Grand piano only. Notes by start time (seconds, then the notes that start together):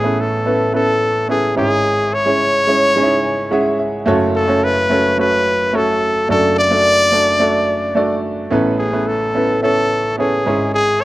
Already playing: A1 A2 B3 C#4 E4 A4 B4
0.03 B3 C#4 E4 A4 B4
0.45 B3 C#4 E4 A4 B4
0.73 B3 C#4 E4 A4 B4
1.28 B3 C#4 E4 A4 B4
1.56 G#1 G#2 G#3 C#4 E4 G#4 C#5
2.26 G#3 C#4 E4 G#4 C#5
2.67 G#3 C#4 E4 G#4 C#5
2.96 G#3 C#4 D#4 G#4 C#5
3.03 E4
3.24 G#5
3.51 G#3 C#4 E4 G#4 E5 F#5
3.79 E5
4.06 F#1 F#2 A3 C#4 F#4 A4 C#5
4.48 A3 C#4 F#4 A4 C#5
4.90 A3 C#4 F#4 A4 C#5
5.17 A3 C#4 F#4 A4 C#5
5.73 A3 C#4 F#4 A4 C#5
6.29 F#1 F#2 A3 D4 F#4 A4 D5
6.70 A3 D4 F#4 A4 D5
7.12 A3 D4 F#4 A4 D5
7.39 A3 D4 F#4 A4 D5
7.95 A3 D4 F#4 A4 D5
8.51 A1 A2 B3 C#4 E4 A4 B4
8.92 B3 C#4 E4 A4 B4
9.34 B3 C#4 E4 A4 B4
9.62 B3 C#4 E4 A4 C#5
10.18 B3 C#4 E4 A4 C#5
10.46 G#1 G#2 G#3 C#4 E4 G#4 C#5